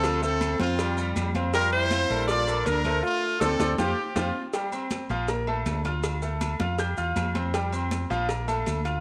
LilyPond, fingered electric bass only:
\new Staff \with { instrumentName = "Fingered electric bass" } { \clef bass \time 4/4 \key f \major \tempo 4 = 160 d,4. f,4. f,4~ | f,4. bes,,4. d,4 | r4 d,8 d,8 f,8 r8 f,8 r8 | r4. bes,,4. d,4~ |
d,4. f,4 e,8 f,4~ | f,4. bes,,4. d,4 | }